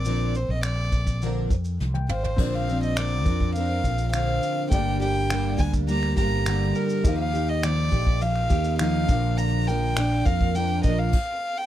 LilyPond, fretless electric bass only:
\new Staff \with { instrumentName = "Fretless electric bass" } { \clef bass \time 4/4 \key bes \mixolydian \tempo 4 = 103 bes,,8. bes,,4.~ bes,,16 f,8 c,8 aes,,8 | bes,,4. f,4 bes,,4 r8 | g,,4. d,4 g,,4 r8 | ees,4. bes,,4 ees,4 bes,,8~ |
bes,,4. f,4 bes,,8 r4 | }